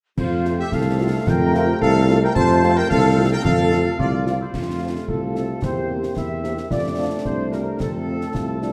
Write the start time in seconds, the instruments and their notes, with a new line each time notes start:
0.17 tuba F2, trombone section C3 A3, flute section F4, trumpet section C5, concert bass drum, crash
0.45 french horn section A3 C4 F4, snare
0.58 flute section G4, trumpet section E5
0.72 tuba C2, flute section A4, trumpet section F5, concert bass drum, snare
0.99 french horn section A3 C4 F4
1.27 tuba F2, flute section A#4, trumpet section G5, concert bass drum, snare
1.54 french horn section A3 C4 F4, snare
1.81 tuba C2, flute section A4, trumpet section F5, concert bass drum
2.09 french horn section A3 C4 F4, snare
2.22 flute section A#4, trumpet section G5
2.34 tuba F2, flute section C5, trumpet section A5, concert bass drum, crash
2.63 french horn section A3 C4 F4, snare
2.77 flute section A#4, trumpet section G5
2.90 tuba C2, flute section A4, trumpet section F5, concert bass drum, snare
3.17 french horn section A3 C4 F4
3.32 flute section A#4, trumpet section G5
3.44 tuba F2, flute section A4, trumpet section F5, concert bass drum, snare
3.71 french horn section A3 C4 F4, snare
3.98 tuba C2, flute section F4, trumpet section D5, concert bass drum
4.26 french horn section A3 C4 F4, snare
4.40 flute section E4, trumpet section C5
4.53 tuba F2, trombone section C3 A3, flute section F4, trumpet section F4, concert bass drum, snare, crash
4.80 french horn section A3 C4 F4
5.08 tuba C2, euphonium F4, flute section A4, trumpet section A4, concert bass drum
5.35 french horn section A3 C4 F4, snare
5.62 tuba E2, trombone section A#3, euphonium G4, flute section C5, trumpet section C5, concert bass drum, snare
5.89 french horn section A#3 C4 G4
6.03 snare
6.16 tuba E2, euphonium E4, flute section E5, trumpet section E5, concert bass drum, snare
6.43 french horn section A#3 C4 G4, euphonium G4, snare
6.57 snare
6.70 tuba F2, trombone section C3 A3, euphonium F4, flute section D5, trumpet section D5, concert bass drum, snare
6.97 french horn section A3 C4 F4, euphonium D4
7.25 tuba C2, flute section C5, trumpet section C5, concert bass drum
7.52 french horn section A3 C4 F4, flute section A#4, trumpet section A#4, snare
7.80 tuba F2, euphonium C4, flute section A4, trumpet section A4, concert bass drum, snare
8.07 french horn section A3 C4 F4
8.21 snare
8.34 tuba C2, euphonium F4, concert bass drum, snare
8.61 french horn section A3 C4 F4, euphonium D4, snare